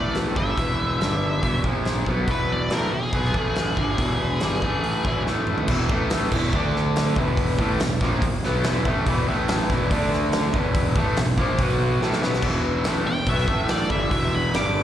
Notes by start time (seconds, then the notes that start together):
Already playing: A1 A2 E3 A3 D5
0.15 snare, open hi-hat
0.36 G1 G2 D3 G3 E5, kick
0.58 E1 E2 B2 E3, kick, open hi-hat
0.99 G1 G2 D3 G3, snare, open hi-hat
1.42 E1 E2 B2 E3, kick, open hi-hat
1.64 A#1 A#2 F3 A#3, kick
1.85 snare, open hi-hat
2.06 B1 B2 F#3 B3, kick
2.27 E1 E2 B2 E3 B4, kick, open hi-hat
2.52 D5
2.70 A1 A2 E3 A3 A#4, snare, open hi-hat
2.92 E1 E2 B2 G#4
3.13 B1 B2 F#3 B3, kick, open hi-hat
3.24 snare
3.34 A1 A2 E3 A3, kick
3.55 snare, open hi-hat
3.77 G1 G2 D3 G3, kick
3.98 E1 E2 B2 E3, kick, open hi-hat
4.40 G1 G2 D3 G3, snare, open hi-hat
4.53 snare
4.62 A1 A2 E3 A3, kick
4.84 open hi-hat
5.05 E1 E2 B2 E3, kick
5.26 A1 A2 E3 A3, snare
5.47 mid tom
5.58 floor tom
5.68 E1 E2 B2 E3, kick, crash
5.89 A1 A2 E3 A3, kick
6.10 snare, open hi-hat
6.32 E1 E2 B2 E3, kick, crash
6.53 D2 D3 A3 D4, kick
6.76 snare
6.96 snare, open hi-hat
7.16 E1 E2 B2 E3, kick
7.37 kick, open hi-hat
7.59 A1 A2 E3 A3, kick
7.80 E1 E2 B2, snare, open hi-hat
8.01 A#1 A#2 F3 A#3, kick, snare
8.22 E1 E2 B2, kick, open hi-hat
8.43 B1 B2 F#3 B3, snare
8.64 E1 E2 B2 E3, snare, open hi-hat
8.85 A1 A2 E3 A3, kick
9.06 E1 E2 B2 E3, kick, open hi-hat
9.27 A1 A2 E3 A3
9.48 snare, open hi-hat
9.69 E1 E2 B2 E3, kick, snare
9.91 D2 D3 A3 D4, kick, open hi-hat
10.13 snare
10.32 snare, open hi-hat
10.54 E1 E2 B2 E3, kick
10.74 kick, open hi-hat
10.96 A1 A2 E3 A3, kick
11.16 E1 E2 B2, snare, open hi-hat
11.37 A#1 A#2 F3 A#3, kick
11.58 B1 B2 F#3 B3, kick, open hi-hat
12.01 A1 A2 E3 A3, snare
12.12 snare
12.21 B1 B2 F#3 B3, snare
12.33 snare
12.42 E1 E2 B2 E3, kick, crash
12.84 A1 A2 E3 A3, snare, open hi-hat
13.06 E1 E2 B2 G5
13.27 B1 B2 F#3 B3 E5, kick, open hi-hat
13.38 snare
13.47 A1 A2 E3 A3, kick
13.68 D5, snare, open hi-hat
13.89 G1 G2 D3 G3 E5, kick
14.10 E1 E2 B2 E3, kick, open hi-hat
14.35 B5
14.53 G1 G2 D3 G3 D6, snare, open hi-hat